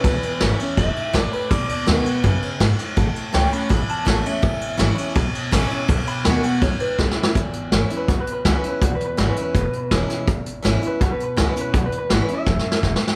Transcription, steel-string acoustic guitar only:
\new Staff \with { instrumentName = "Steel-string acoustic guitar" } { \time 4/4 \key e \major \tempo 4 = 164 << { r4 <e gis cis' e'>8 <cis' e'>8 r2 | r4 <dis gis b fis'>8 <b fis'>8 r2 | r4 <e a cis' fis'>8 <cis' fis'>8 r4 <e a cis' fis'>8 <cis' fis'>8 | r4 <e gis cis' e'>8 <cis' e'>8 r4 <e gis cis' e'>8 <cis' e'>8 |
r4 <dis gis b fis'>8 <b fis'>8 r2 | r4 <e gis cis' e'>8 <cis' e'>8 r4 <e gis cis' e'>8 <cis' e'>8 | r4 <e gis cis' e'>8 <cis' e'>8 r4 <e gis cis' e'>4 | r4 <e gis cis' e'>8 <cis' e'>8 r4 <e gis cis' e'>8 <cis' e'>8 |
r4 <e gis cis' e'>8 <cis' e'>8 r2 | } \\ { e,2 gis,4 a,4 | b,2 cis4 gis,4 | a,2 e,2 | e,2 b,2 |
b,2 gis,4 fis,4 | e,2 b,2 | e,2 b,2 | e,2 b,2 |
e,2 fis,4 gis,4 | } >> }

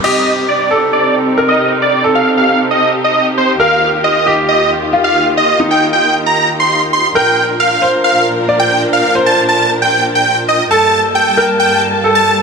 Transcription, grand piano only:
\new Staff \with { instrumentName = "Grand piano" } { \time 4/4 \key c \dorian \tempo 4 = 135 g'4. a'4. bes'4~ | bes'8 a'2.~ a'8 | bes'4. g'4. f'4~ | f'8 ees'2.~ ees'8 |
bes'4. c''4. d''4~ | d''8 c''2.~ c''8 | a'4. bes'4. a'4 | }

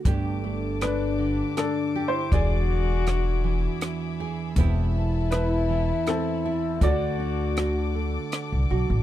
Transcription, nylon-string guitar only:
\new Staff \with { instrumentName = "Nylon-string guitar" } { \time 3/4 \key g \major \tempo 4 = 80 << { <a d' g'>8 a8 d'4. g'8 | <gis d' gis'>8 gis8 d'4. gis'8 | <b c' e'>4 c'4. e'8 | <d' fis'>8 d'8 fis'4. fis'8 | } \\ { <g, d>4. d4. | e,4. e4. | e,4. e4. | d4. a4. | } >> }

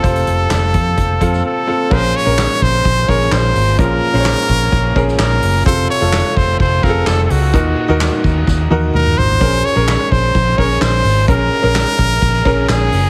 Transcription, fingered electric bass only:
\new Staff \with { instrumentName = "Fingered electric bass" } { \clef bass \time 4/4 \key bes \minor \tempo 4 = 128 f,,8 f,,8 f,,8 f,8 f,,8 f,8 r4 | bes,,8 r16 bes,,8 r16 bes,,8 bes,,8 bes,,8 bes,,8 aes,,8 | bes,,8 r16 bes,,8 r16 bes,,8 bes,,8 bes,,8 bes,,8 ges,,8 | f,,8 r16 f,,8 r16 f,,8 f,,8 f,,8 f,,8 des,8 |
ees,8 r16 ees,8 r16 ees,8 ees,8 ees,8 ees,8 aes,,8 | bes,,8 r16 bes,,8 r16 bes,,8 bes,,8 bes,,8 bes,,8 aes,,8 | bes,,8 r16 bes,,8 r16 bes,,8 bes,,8 bes,,8 bes,,8 ges,,8 | }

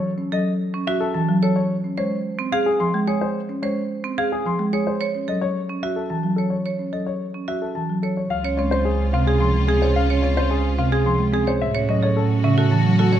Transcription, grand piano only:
\new Staff \with { instrumentName = "Grand piano" } { \time 3/4 \key des \major \tempo 4 = 109 r8 ees''16 r8. e''16 a'16 a''16 r16 a'16 cis''16 | r8 des''16 r8. f''16 aes'16 c'''16 r16 aes'16 c''16 | r8 des''16 r8. f''16 aes'16 c'''16 r16 aes'16 c''16 | r8 ees''16 cis''16 r8 e''16 a'16 a''16 r16 a'16 cis''16 |
r8 ees''16 cis''16 r8 e''16 a'16 a''16 r16 a'16 cis''16 | f''16 r16 des''16 c''16 aes'16 r16 f''16 aes'16 c'''16 r16 aes'16 c''16 | f''16 r16 des''16 c''16 aes'16 r16 f''16 aes'16 c'''16 r16 aes'16 c''16 | e''16 r16 ees''16 cis''16 a'16 r16 e''16 a'16 a''16 r16 a'16 cis''16 | }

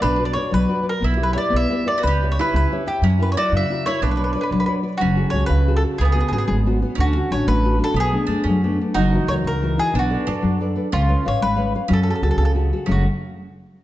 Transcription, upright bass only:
\new Staff \with { instrumentName = "Upright bass" } { \clef bass \time 6/8 \key b \minor \tempo 4. = 121 b,,4. b,,8 r4 | b,,4. b,,8 r4 | cis,4. cis,8 r4 | fis,4. fis,8 r4 |
b,,4. b,,8 r4 | \key fis \minor fis,,4 cis,8 cis,4. | cis,4 gis,,8 gis,,4. | d,4 a,,8 a,,4. |
b,,4 fis,8 fis,4. | fis,,4 cis,8 cis,4. | b,,4 fis,8 fis,4. | cis,4 gis,,8 gis,,4. |
fis,4 cis,8 cis,4. | fis,,8 r2 r8 | }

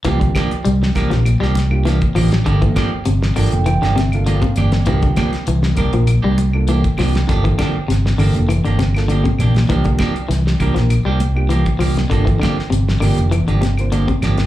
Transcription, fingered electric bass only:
\new Staff \with { instrumentName = "Fingered electric bass" } { \clef bass \time 4/4 \key c \mixolydian \tempo 4 = 100 c,8 r8 c,8 c,16 bes,,8 c,4~ c,16 a,,8 | g,,8 r8 g,,8 g,,16 f,,8 g,,4~ g,,16 g,,8 | c,8 r8 c,8 c,16 bes,,8 c,4~ c,16 c,8 | g,,8 r8 g,,8 g,,16 f,,8 g,,4~ g,,16 bes,,8 |
c,8 r8 c,8 c,16 bes,,8 c,4~ c,16 c,8 | g,,8 r8 g,,8 g,,16 f,,8 g,,4~ g,,16 g,,8 | }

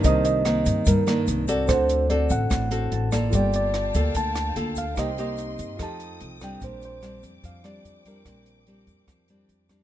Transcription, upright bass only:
\new Staff \with { instrumentName = "Upright bass" } { \clef bass \time 4/4 \key bes \major \tempo 4 = 146 c,4. g,8 g,4 c,4 | d,4. a,,8 a,,4 a,,4 | g,,4. d,8 d,4 d,4 | c,4. g,8 f,4 c,4 |
bes,,4. f,8 f,4 f,4 | bes,,4. f,8 f,4 f,4 | }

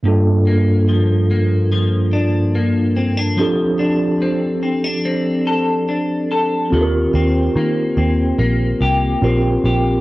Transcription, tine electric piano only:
\new Staff \with { instrumentName = "Tine electric piano" } { \time 4/4 \key g \minor \tempo 4 = 72 <g, bes d' f' a'>1 | <f c' d' g' a'>1 | <c' f' g' a' bes'>2. <c' f' g' bes'>4 | }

